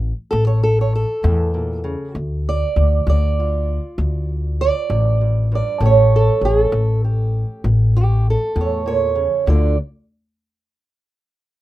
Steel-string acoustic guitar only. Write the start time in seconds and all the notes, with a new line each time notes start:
0.31 A2 A4
0.47 C#5
0.63 A4
0.81 C#5
0.95 A4
1.23 A2
1.54 A#2
1.84 C#3
2.16 D2
2.49 D5
3.08 D2 D5
3.40 F4
3.99 D2
4.61 D5
4.91 E2
5.21 F2
5.52 G2 D5
5.81 A2 A3 C#4 G4
5.86 C#5
6.16 A4
6.45 G#4
6.64 A4
6.72 A2
7.04 G4
7.65 A2
7.97 G4
8.30 A4
8.55 A2
8.61 C#5
8.86 A#2 C#5
9.15 C#3
9.46 D2 D3 D4 F4 D5